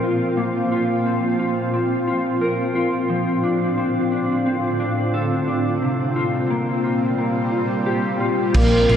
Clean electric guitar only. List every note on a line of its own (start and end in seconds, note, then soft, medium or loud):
0.00 0.36 A#3 medium
0.00 1.05 C4 medium
0.00 0.71 F4 medium
0.00 2.40 A#4 medium
0.37 3.09 A#3 medium
0.72 1.39 F4 medium
1.06 1.73 C4 medium
1.39 2.07 F4 medium
1.74 3.46 C4 soft
2.07 2.75 F4 medium
2.41 3.16 A#4 medium
2.75 3.43 F4 medium
3.10 6.60 F3 medium
3.43 4.11 D4 medium
3.78 4.46 C4 medium
4.12 4.79 D4 medium
4.46 6.50 C4 medium
4.80 5.47 D4 medium
5.14 5.89 A4 medium
5.48 5.89 D4 medium
5.82 8.55 C3 medium
6.16 6.84 F4 medium
6.50 7.18 A#3 medium
6.84 7.52 F4 soft
7.18 8.55 A#3 soft
7.52 8.20 F4 soft
7.86 8.61 G4 medium
8.20 8.88 F4 medium
8.55 8.97 A#3 medium
8.89 8.97 F4 medium